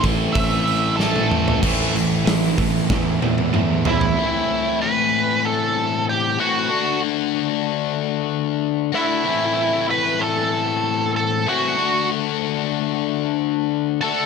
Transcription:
0.00 0.33 A1 medium
0.00 1.61 A2 medium
0.00 1.61 E3 medium
0.00 1.62 A3 loud
0.00 0.97 E4 medium
0.00 kick medium
0.04 0.98 A2 medium
0.04 0.98 E3 medium
0.04 0.98 A3 medium
0.04 0.98 C4 medium
0.04 open hi-hat medium
0.33 1.59 A1 medium
0.33 1.00 E5 loud
0.33 kick loud
0.33 open hi-hat medium
0.68 open hi-hat medium
0.97 1.61 A2 medium
0.97 1.61 E3 medium
0.97 1.62 A3 medium
0.97 1.62 C4 medium
0.97 1.58 A4 medium
0.97 snare medium
1.01 1.62 E4 medium
1.16 high tom medium
1.31 mid tom medium
1.48 floor tom medium
1.62 2.54 A1 medium
1.62 1.92 A2 medium
1.62 1.93 A2 medium
1.62 1.93 E3 medium
1.62 1.93 E3 loud
1.62 1.93 A3 loud
1.62 1.94 C4 loud
1.62 1.94 E4 loud
1.62 kick loud
1.62 crash loud
1.93 2.24 A2 medium
1.93 2.25 E3 medium
1.93 2.24 E3 medium
1.93 2.25 A3 medium
1.93 2.26 C4 medium
1.93 2.26 E4 medium
1.93 open hi-hat medium
2.25 2.57 A2 medium
2.25 2.56 A2 medium
2.25 2.57 E3 medium
2.25 2.56 E3 medium
2.25 2.58 A3 loud
2.25 2.58 C4 medium
2.25 2.58 E4 medium
2.25 snare loud
2.25 open hi-hat medium
2.58 2.90 A1 medium
2.58 2.89 A2 medium
2.58 2.87 A2 medium
2.58 2.90 E3 medium
2.58 2.87 E3 medium
2.58 2.90 A3 medium
2.58 2.90 C4 loud
2.58 2.91 E4 medium
2.58 kick medium
2.58 open hi-hat medium
2.90 4.13 E2 medium
2.90 3.20 A2 loud
2.90 3.19 A2 medium
2.90 3.21 E3 loud
2.90 3.19 E3 loud
2.90 3.22 A3 loud
2.90 3.22 C4 loud
2.90 3.22 E4 loud
2.90 kick loud
2.90 snare medium
3.22 3.53 A2 medium
3.22 3.51 A2 medium
3.22 3.54 E3 medium
3.22 3.51 E3 medium
3.22 3.54 A3 medium
3.22 3.55 C4 loud
3.22 3.55 E4 medium
3.22 high tom medium
3.38 high tom medium
3.54 3.83 A2 medium
3.54 3.84 A2 medium
3.54 3.85 E3 medium
3.54 3.83 E3 medium
3.54 3.85 A3 medium
3.54 3.86 C4 medium
3.54 3.86 E4 medium
3.54 mid tom medium
3.85 4.15 A2 medium
3.85 4.14 A2 medium
3.85 4.16 E3 medium
3.85 4.15 E3 medium
3.85 4.16 A3 medium
3.85 4.16 C4 loud
3.85 4.78 E4 medium
3.85 4.16 E4 medium
3.85 4.78 E5 medium
3.85 floor tom loud
4.01 floor tom loud
4.17 6.37 A2 loud
4.17 6.38 E3 loud
4.17 6.39 A3 loud
4.17 6.38 C4 loud
4.17 6.38 E4 loud
4.82 5.41 B4 medium
4.82 5.47 B5 loud
5.45 6.04 A4 medium
5.45 6.09 A5 medium
6.10 6.39 G4 medium
6.10 6.40 G5 loud
6.39 6.70 A2 medium
6.39 6.69 E3 medium
6.39 6.69 A3 medium
6.39 6.69 C4 medium
6.39 6.69 E4 medium
6.39 7.00 F#4 medium
6.39 6.99 F#5 medium
6.69 8.90 D3 loud
6.69 8.93 A3 loud
6.69 8.91 D4 loud
6.69 8.91 F#4 loud
8.92 9.24 D3 medium
8.92 9.24 A3 medium
8.92 9.23 D4 medium
8.92 9.85 E4 medium
8.92 9.23 F#4 loud
8.92 9.92 E5 medium
9.24 11.45 A2 loud
9.24 11.45 E3 loud
9.24 11.47 A3 loud
9.24 11.46 C4 loud
9.24 11.45 E4 loud
9.90 10.19 B4 medium
9.90 10.22 B5 medium
10.21 11.12 A4 medium
10.21 11.15 A5 medium
11.16 11.46 A4 medium
11.16 11.45 A5 loud
11.47 11.77 A2 medium
11.47 11.76 E3 medium
11.47 11.78 A3 medium
11.47 11.77 C4 loud
11.47 11.77 E4 loud
11.47 12.08 F#4 medium
11.47 12.07 F#5 medium
11.77 13.98 D3 loud
11.77 14.02 A3 loud
11.77 13.99 D4 loud
11.77 13.99 F#4 loud
14.01 14.26 D3 medium
14.01 14.26 A3 medium
14.01 14.26 D4 medium
14.01 14.26 F#4 loud
14.01 14.26 A4 medium
14.01 14.26 A5 loud

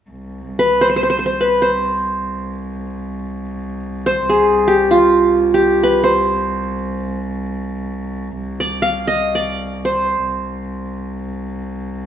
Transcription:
0.10 10.23 C2 medium
0.59 0.87 B4 medium
0.81 0.89 C5 medium
0.89 0.96 C5 medium
0.96 1.03 C5 medium
1.03 1.09 C5 medium
1.10 1.18 C5 medium
1.19 1.25 C5 soft
1.26 1.47 C5 medium
1.41 1.68 B4 medium
1.62 3.24 C5 medium
4.06 5.12 C5 medium
4.29 4.74 G#4 medium
4.68 5.54 G4 medium
4.91 6.25 F4 medium
5.54 6.80 G4 medium
5.83 6.10 B4 medium
6.04 7.18 C5 medium
8.60 9.13 D5 medium
8.82 9.71 F5 medium
9.07 9.41 D#5 medium
9.35 10.34 D5 medium
9.85 11.76 C5 medium
10.23 12.06 C2 medium

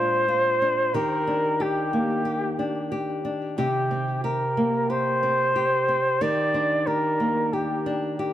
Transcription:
0.00 0.94 A#2 medium
0.00 1.02 G#3 medium
0.00 0.61 D4 medium
0.00 0.27 F4 medium
0.00 0.96 C5 loud
0.28 0.94 F4 medium
0.62 1.27 D4 medium
0.94 4.44 D#3 medium
0.94 1.60 G4 medium
0.94 1.63 A#4 loud
1.27 2.58 D4 medium
1.60 2.25 G4 medium
1.60 3.26 G4 loud
1.93 3.94 A#3 medium
2.25 2.91 G4 medium
2.59 3.24 D4 medium
2.92 3.58 G4 medium
3.25 3.65 D4 medium
3.58 6.22 C3 medium
3.58 4.20 G4 loud
3.58 4.24 G4 medium
3.91 5.22 C4 medium
4.24 4.89 G4 medium
4.24 4.92 A#4 medium
4.57 7.20 A#3 medium
4.90 5.55 G4 medium
4.90 6.23 C5 loud
5.23 5.87 C4 medium
5.56 6.21 G4 medium
5.88 6.29 C4 medium
6.21 8.33 D#3 medium
6.21 6.86 G4 medium
6.21 6.88 D5 loud
6.54 7.86 D4 medium
6.87 7.52 G4 medium
6.87 7.55 A#4 loud
7.20 8.33 A#3 medium
7.53 8.18 G4 medium
7.53 8.20 G4 medium
7.86 8.33 D4 medium
8.19 8.33 G4 medium

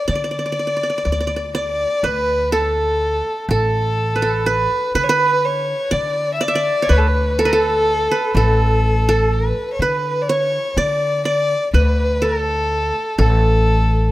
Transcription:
0.00 0.14 C#5 medium
0.08 0.87 D3 medium
0.08 0.15 D5 medium
0.08 1.52 D5 medium
0.15 0.24 D5 soft
0.24 0.31 D5 medium
0.31 0.38 D5 soft
0.39 0.45 D5 soft
0.46 0.52 D5 soft
0.52 0.59 D5 medium
0.59 0.67 D5 soft
0.67 0.76 D5 soft
0.77 0.83 D5 soft
0.83 0.89 D5 medium
0.90 0.97 D5 soft
0.98 1.05 D5 medium
1.05 1.84 D2 medium
1.05 1.12 D5 soft
1.12 1.20 D5 medium
1.20 1.27 D5 soft
1.27 1.36 D5 medium
1.36 1.54 D5 soft
1.55 2.53 D5 medium
1.55 2.07 D5 medium
2.03 3.20 D2 medium
2.03 3.13 B4 medium
2.03 2.53 B4 loud
2.52 3.50 A4 medium
2.52 3.46 A4 medium
3.49 4.65 A1 loud
3.49 4.22 A4 medium
3.49 4.48 A4 medium
4.16 4.46 B4 medium
4.22 5.39 A4 medium
4.46 4.95 B4 medium
4.95 5.73 D3 medium
4.95 5.09 B4 medium
4.95 5.05 B4 medium
5.03 5.12 C#5 medium
5.09 6.18 B4 medium
5.09 5.46 B4 medium
5.45 5.95 C#5 medium
5.91 6.70 D3 medium
5.91 6.40 D5 medium
5.91 6.34 D5 medium
6.34 6.45 E5 medium
6.41 6.55 D5 medium
6.41 6.94 D5 medium
6.48 7.40 E5 medium
6.55 7.54 D5 medium
6.82 7.85 C#5 medium
6.89 8.06 D2 medium
6.89 7.45 B4 medium
6.89 6.99 B4 medium
6.98 7.08 A4 medium
7.07 7.42 B4 medium
7.39 7.52 A4 medium
7.39 8.36 A4 loud
7.45 8.11 B4 medium
7.53 8.36 A4 medium
8.11 9.20 B4 medium
8.35 9.51 A1 loud
8.35 9.35 A4 medium
8.35 9.08 A4 medium
9.09 10.26 A4 medium
9.33 9.73 B4 medium
9.73 9.82 C#5 medium
9.79 10.57 D3 medium
9.79 10.23 B4 medium
9.79 10.91 B4 medium
10.22 10.31 D5 medium
10.29 10.79 C#5 medium
10.29 10.84 C#5 medium
10.77 11.54 D3 loud
10.77 11.25 D5 medium
10.77 11.26 D5 medium
11.25 12.24 D5 medium
11.25 11.71 D5 medium
11.74 12.90 D2 loud
11.74 12.83 B4 medium
11.74 12.25 B4 medium
12.22 13.18 A4 medium
12.22 13.20 A4 medium
13.18 14.12 A1 loud
13.18 14.12 A4 medium

